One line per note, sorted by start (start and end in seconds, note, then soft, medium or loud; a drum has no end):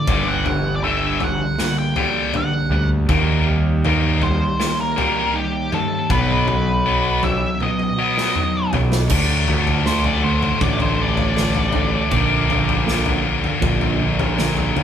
0.00 1.59 A#3 medium
0.00 0.29 D5 medium
0.08 1.42 G1 medium
0.08 1.96 G2 medium
0.08 0.43 G2 medium
0.08 0.44 D3 medium
0.08 0.44 G3 medium
0.08 kick loud
0.08 floor tom medium
0.28 0.73 F#5 medium
0.45 0.79 G2 medium
0.45 0.80 D3 medium
0.45 1.95 G4 medium
0.45 floor tom medium
0.76 0.83 D5 medium
0.84 1.19 G2 medium
0.84 1.19 D3 medium
0.84 1.20 G3 medium
0.84 2.32 D4 medium
0.84 1.22 E5 medium
1.20 1.55 G2 medium
1.20 1.55 D3 medium
1.20 2.70 G3 medium
1.20 1.60 F#5 medium
1.20 floor tom medium
1.58 1.93 G2 medium
1.58 1.93 D3 medium
1.58 3.09 A#3 medium
1.58 1.78 F#5 medium
1.58 snare medium
1.79 2.36 G5 medium
1.96 2.32 G2 medium
1.96 2.32 D3 medium
1.96 2.32 G3 medium
1.96 3.09 G4 medium
1.96 floor tom medium
2.33 2.68 G2 medium
2.33 2.68 D3 medium
2.33 3.09 D4 medium
2.33 2.88 F#5 medium
2.33 floor tom medium
2.70 3.04 D2 medium
2.70 3.05 G2 medium
2.70 3.06 D3 medium
2.70 3.09 G3 medium
3.09 4.44 D#2 loud
3.09 3.44 D#3 medium
3.09 4.97 D#3 medium
3.09 3.45 G3 loud
3.09 3.45 A#3 medium
3.09 kick loud
3.09 floor tom medium
3.46 3.81 D#3 medium
3.46 3.82 G3 medium
3.46 4.96 G4 medium
3.85 4.20 D#3 medium
3.85 4.20 G3 loud
3.85 4.21 A#3 loud
3.85 5.32 D#4 medium
3.85 floor tom medium
3.85 mid tom medium
4.22 4.56 D#3 medium
4.22 5.72 G3 medium
4.22 4.56 G3 medium
4.22 4.80 C5 medium
4.22 floor tom medium
4.60 4.94 D#3 medium
4.60 4.94 G3 medium
4.60 6.11 A#3 medium
4.60 snare medium
4.81 5.38 A#4 medium
4.96 5.32 D#3 medium
4.96 5.32 G3 loud
4.96 5.33 A#3 medium
4.96 6.10 G4 medium
4.96 floor tom medium
5.34 5.68 D#3 medium
5.34 5.69 G3 medium
5.34 6.10 D#4 medium
5.34 5.74 G4 medium
5.72 6.06 D#3 medium
5.72 6.10 G3 medium
5.72 6.07 G3 medium
5.72 6.11 A4 medium
5.72 mid tom medium
6.10 7.45 B1 medium
6.10 7.98 B2 medium
6.10 6.46 B2 medium
6.10 6.46 F#3 medium
6.10 6.46 B3 medium
6.10 6.47 B4 medium
6.10 kick loud
6.10 floor tom medium
6.10 mid tom medium
6.47 6.82 B2 medium
6.47 6.82 F#3 medium
6.47 7.96 F#4 medium
6.47 7.26 B4 medium
6.47 floor tom medium
6.86 7.21 B2 medium
6.86 7.21 F#3 loud
6.86 7.22 B3 loud
7.23 7.57 B2 medium
7.23 8.71 F#3 medium
7.23 7.58 F#3 medium
7.23 7.62 E5 loud
7.23 floor tom medium
7.60 7.95 B2 medium
7.60 7.96 F#3 medium
7.60 9.09 B3 medium
7.60 8.71 D#5 medium
7.60 high tom medium
7.79 high tom soft
7.98 8.34 B2 medium
7.98 8.35 F#3 medium
7.98 8.35 B3 medium
7.98 9.11 F#4 medium
8.18 snare medium
8.35 8.71 B2 medium
8.35 8.71 F#3 medium
8.35 9.09 D#4 medium
8.35 mid tom medium
8.72 9.07 B1 loud
8.72 9.08 B2 medium
8.72 9.09 F#3 medium
8.72 9.08 F#3 medium
8.72 floor tom medium
8.92 snare medium
9.09 9.45 D2 medium
9.09 9.46 D3 medium
9.09 12.10 D3 medium
9.09 12.10 F#3 medium
9.09 9.46 A3 medium
9.09 12.11 A3 medium
9.09 9.46 D4 medium
9.09 kick loud
9.09 floor tom medium
9.09 crash loud
9.14 12.11 D4 medium
9.47 10.50 D2 medium
9.47 9.82 D3 medium
9.47 9.82 A3 medium
9.47 floor tom medium
9.47 mid tom medium
9.67 floor tom medium
9.86 10.20 D3 medium
9.86 10.20 A3 medium
9.86 10.06 C5 medium
9.86 snare medium
10.04 10.24 D5 medium
10.04 floor tom medium
10.24 10.58 D3 medium
10.24 10.58 A3 medium
10.24 10.42 C5 medium
10.42 10.62 C5 medium
10.42 mid tom medium
10.61 11.96 A1 medium
10.61 10.97 D3 medium
10.61 10.97 A3 medium
10.61 10.97 D4 medium
10.61 10.80 D5 medium
10.61 kick loud
10.61 floor tom medium
10.80 11.02 C5 medium
10.80 floor tom medium
11.00 11.33 D3 medium
11.00 11.34 A3 medium
11.00 13.22 D5 medium
11.17 floor tom medium
11.37 11.71 D3 medium
11.37 11.71 A3 medium
11.37 snare medium
11.55 floor tom medium
11.73 12.10 D3 medium
11.73 12.10 A3 medium
11.73 12.10 D4 loud
11.73 floor tom medium
12.11 13.46 A#1 medium
12.11 12.47 A#2 medium
12.11 14.83 A#2 medium
12.11 12.48 D3 medium
12.11 14.83 D3 medium
12.11 14.83 F3 medium
12.11 12.48 A#3 loud
12.11 14.83 A#3 medium
12.11 14.83 D4 medium
12.11 kick loud
12.11 floor tom medium
12.48 12.83 A#2 medium
12.48 12.83 D3 medium
12.48 floor tom medium
12.48 mid tom medium
12.69 floor tom medium
12.86 13.22 A#2 medium
12.86 13.22 D3 medium
12.86 13.23 A#3 medium
12.86 snare medium
13.06 floor tom medium
13.24 13.59 A#2 medium
13.24 13.59 D3 medium
13.44 mid tom medium
13.61 14.83 A#1 loud
13.61 13.97 A#2 medium
13.61 13.98 D3 medium
13.61 13.98 A#3 medium
13.61 kick loud
13.61 floor tom medium
13.81 floor tom medium
14.00 14.34 A#2 medium
14.00 14.34 D3 medium
14.19 floor tom medium
14.38 14.72 A#2 medium
14.38 14.72 D3 medium
14.38 snare medium
14.57 floor tom medium
14.76 14.83 A#2 medium
14.76 14.83 D3 medium
14.76 floor tom medium